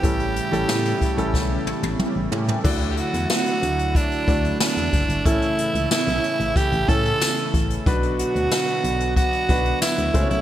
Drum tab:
CC |----------------|x---------------|----------------|----------------|
HH |xxxx-xxx--------|-xxx-xxxxxxx-xxx|xxxx-xxxxxxx-xxx|xxxx-xxxxxxx-xxx|
TB |----x-----------|----x-------x---|----x-------x---|----x-------x---|
SD |----o---o-------|----o-------o---|----o-------o---|----o-------o---|
T1 |----------oo----|----------------|----------------|----------------|
T2 |------------o---|----------------|----------------|----------------|
FT |--------------oo|----------------|----------------|----------------|
BD |o-----o-o-------|o-------o-o---o-|o-------o-o---o-|o-------o-o---o-|